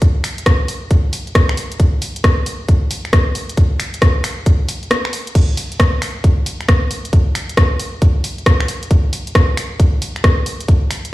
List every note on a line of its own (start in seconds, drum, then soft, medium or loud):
0.02 kick loud
0.02 closed hi-hat medium
0.24 finger snap soft
0.24 open hi-hat loud
0.38 closed hi-hat medium
0.46 kick loud
0.46 cross-stick loud
0.46 closed hi-hat medium
0.68 open hi-hat medium
0.91 kick loud
0.91 closed hi-hat medium
1.13 open hi-hat loud
1.27 closed hi-hat soft
1.35 kick loud
1.35 cross-stick loud
1.35 closed hi-hat medium
1.49 finger snap medium
1.57 open hi-hat medium
1.72 closed hi-hat medium
1.80 kick loud
1.80 closed hi-hat medium
2.02 open hi-hat loud
2.16 closed hi-hat medium
2.24 kick loud
2.24 cross-stick loud
2.24 closed hi-hat medium
2.46 open hi-hat loud
2.69 kick loud
2.69 closed hi-hat medium
2.91 open hi-hat loud
3.05 finger snap soft
3.05 closed hi-hat soft
3.13 kick loud
3.13 cross-stick loud
3.13 closed hi-hat medium
3.35 open hi-hat medium
3.49 closed hi-hat medium
3.57 kick loud
3.57 closed hi-hat medium
3.80 finger snap medium
3.80 open hi-hat loud
3.94 closed hi-hat medium
4.02 kick loud
4.02 cross-stick loud
4.02 closed hi-hat medium
4.24 finger snap medium
4.24 open hi-hat loud
4.46 kick loud
4.46 closed hi-hat medium
4.69 open hi-hat loud
4.83 closed hi-hat soft
4.91 cross-stick loud
4.91 closed hi-hat medium
5.05 finger snap medium
5.13 open hi-hat loud
5.27 closed hi-hat medium
5.35 kick loud
5.35 closed hi-hat medium
5.35 crash medium
5.57 open hi-hat loud
5.72 closed hi-hat medium
5.80 kick loud
5.80 cross-stick loud
5.80 closed hi-hat medium
6.02 finger snap medium
6.02 open hi-hat medium
6.24 kick loud
6.24 closed hi-hat medium
6.46 open hi-hat loud
6.61 finger snap soft
6.61 closed hi-hat soft
6.68 kick loud
6.68 cross-stick loud
6.68 closed hi-hat medium
6.91 open hi-hat loud
7.05 closed hi-hat medium
7.13 kick loud
7.13 closed hi-hat medium
7.35 finger snap medium
7.35 open hi-hat loud
7.49 closed hi-hat medium
7.57 kick loud
7.57 cross-stick loud
7.57 closed hi-hat medium
7.80 open hi-hat medium
8.02 kick loud
8.02 closed hi-hat medium
8.24 open hi-hat loud
8.38 closed hi-hat soft
8.46 kick loud
8.46 cross-stick loud
8.46 closed hi-hat medium
8.60 finger snap medium
8.68 open hi-hat loud
8.83 closed hi-hat medium
8.91 kick loud
8.91 closed hi-hat medium
9.13 open hi-hat loud
9.27 closed hi-hat medium
9.35 kick loud
9.35 cross-stick loud
9.35 closed hi-hat medium
9.57 finger snap medium
9.57 open hi-hat medium
9.80 kick loud
9.80 closed hi-hat medium
10.02 open hi-hat loud
10.16 finger snap soft
10.16 closed hi-hat soft
10.24 kick loud
10.24 cross-stick loud
10.24 closed hi-hat medium
10.46 open hi-hat medium
10.60 closed hi-hat medium
10.68 kick loud
10.68 closed hi-hat medium
10.91 finger snap soft
10.91 open hi-hat loud
11.05 closed hi-hat medium